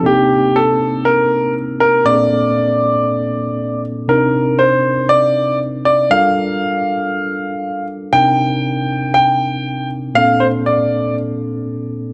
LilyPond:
<<
  \new Staff \with { instrumentName = "Grand piano" } { \time 4/4 \key c \dorian \tempo 4 = 119 g'4 a'4 bes'4 r8 bes'8 | d''2.~ d''8 r8 | bes'4 c''4 d''4 r8 d''8 | f''2.~ f''8 r8 |
g''2 g''4. r8 | f''8 c''8 d''4 r2 | }
  \new Staff \with { instrumentName = "Tine electric piano" } { \time 4/4 \key c \dorian <c bes c' d' ees'>1 | <bes, bes c' d' aes' a'>1 | <c c' d' ees' bes'>1 | <g d' f' a' bes'>1 |
<c c' d' ees' bes'>1 | <bes, bes c' d' a'>1 | }
>>